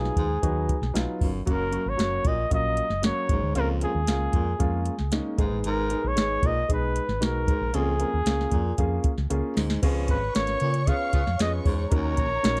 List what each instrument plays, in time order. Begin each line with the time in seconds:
Already playing: grand piano F#3 B3 D#4 F4, trumpet G#4
0.05 snare
0.16 fingered electric bass D#2, baritone saxophone G#2, kick, closed hi-hat
0.42 fingered electric bass D#2, grand piano F#3 B3 D#4 F#4, kick, closed hi-hat
0.69 kick, closed hi-hat
0.82 fingered electric bass B1, snare
0.94 fingered electric bass B1, grand piano F#3 B3 D#4 F4, snare, closed hi-hat
1.21 fingered electric bass G1, baritone saxophone F#2, kick, open hi-hat
1.46 fingered electric bass F#1, baritone saxophone F#2, grand piano F#3 A#3 C#4 F#4, trumpet A#4, kick, closed hi-hat
1.71 grand piano F#3 A#3 C#4 F#4, closed hi-hat
1.86 fingered electric bass G#1, trumpet C#5
1.96 fingered electric bass F#1, grand piano F#3 A#3 C#4 F#4, snare, closed hi-hat
2.25 fingered electric bass A#1, baritone saxophone A#2, trumpet D#5, kick, closed hi-hat
2.50 fingered electric bass A#1, grand piano F#3 A#3 C#4 F4, trumpet D#5, kick, closed hi-hat
2.77 closed hi-hat
2.90 fingered electric bass F#1, snare
3.02 grand piano F#3 A#3 C#4 F#4, trumpet C#5, snare, closed hi-hat
3.29 fingered electric bass G#1, baritone saxophone G#2, kick, closed hi-hat
3.43 fingered electric bass D2
3.55 fingered electric bass C#2, baritone saxophone F2, grand piano G#3 A#3 C#4 F4, trumpet A#4, closed hi-hat
3.81 grand piano G#3 A#3 C#4 F4, trumpet G#4, closed hi-hat
3.95 fingered electric bass D#2
4.07 fingered electric bass C#2, grand piano G#3 A#3 C#4 F4, snare, closed hi-hat
4.33 fingered electric bass F2, baritone saxophone A#2, kick, closed hi-hat
4.59 fingered electric bass F2, grand piano G#3 A#3 C#4 F4, kick, closed hi-hat
4.86 closed hi-hat
4.99 fingered electric bass C#2, snare
5.12 grand piano G#3 A#3 C#4 D#4, snare, closed hi-hat
5.38 fingered electric bass G#1, baritone saxophone G#2, grand piano G#3 A#3 D#4 G#4, kick, closed hi-hat
5.44 grand piano B3
5.51 fingered electric bass A1
5.64 fingered electric bass G#1, baritone saxophone G#2, closed hi-hat
5.68 trumpet A#4
5.90 grand piano G#3 B3 D#4 G#4, closed hi-hat
6.04 fingered electric bass A#1, trumpet C#5
6.15 fingered electric bass G#1, grand piano G#3 B3 D#4 G#4, snare, closed hi-hat
6.42 fingered electric bass B1, baritone saxophone A#2, trumpet D#5, kick, closed hi-hat
6.68 fingered electric bass B1, grand piano G#3 B3 D#4 G#4, kick, closed hi-hat
6.73 trumpet B4
6.96 closed hi-hat
7.08 fingered electric bass G#1, snare
7.20 fingered electric bass B1, grand piano G#3 B3 D#4 F#4, trumpet A#4, snare, closed hi-hat
7.48 baritone saxophone G#2, kick, closed hi-hat
7.61 fingered electric bass A#1
7.73 fingered electric bass C#2, baritone saxophone F2, grand piano A#3 C#4 F4 G#4, trumpet G#4, closed hi-hat
7.99 grand piano A#3 C#4 F4 A#4, closed hi-hat
8.14 fingered electric bass D#2
8.26 fingered electric bass C#2, grand piano A#3 C#4 F4 G#4, snare, closed hi-hat
8.41 snare
8.51 fingered electric bass F2, baritone saxophone A#2, kick, closed hi-hat
8.78 fingered electric bass F2, grand piano A#3 C#4 F4 G#4, kick, closed hi-hat
9.04 muted fingered electric bass stroke, kick, closed hi-hat
9.18 fingered electric bass C#2, snare
9.30 fingered electric bass C#2, grand piano A#3 C#4 F4 G#4, closed hi-hat
9.57 fingered electric bass D2, baritone saxophone G#2, snare, open hi-hat
9.70 snare
9.82 fingered electric bass C#2, baritone saxophone F2, grand piano B3 C#4 F4 G#4, string section C#5 C#6, kick, closed hi-hat, crash
10.08 fingered electric bass G#1, trumpet B4, kick, closed hi-hat
10.35 fingered electric bass G#1, grand piano B3 C#4 F4 A#4, trumpet C#5, snare, closed hi-hat
10.47 snare, closed hi-hat
10.60 baritone saxophone A#2, fingered electric bass C#3, closed hi-hat
10.74 closed hi-hat
10.87 grand piano B3 C#4 F4 G#4, horn section F4 G#4 B4, trumpet F5, kick, closed hi-hat
11.13 fingered electric bass C#2, horn section F4 G#4 B4, kick, closed hi-hat
11.27 fingered electric bass F2, snare
11.39 fingered electric bass F2, grand piano B3 C#4 F4 G#4, horn section F4 G#4 B4, trumpet D#5, snare, closed hi-hat
11.65 fingered electric bass E2, baritone saxophone G#2, trumpet C#5, kick, open hi-hat
11.91 fingered electric bass D#2, baritone saxophone D#2, grand piano C#4 D#4 F#4 A#4, string section A#4 A#5, kick, closed hi-hat
12.17 fingered electric bass A#1, kick, closed hi-hat
12.43 fingered electric bass A#1, grand piano C#4 D#4 F#4 A#4, snare, closed hi-hat
12.57 closed hi-hat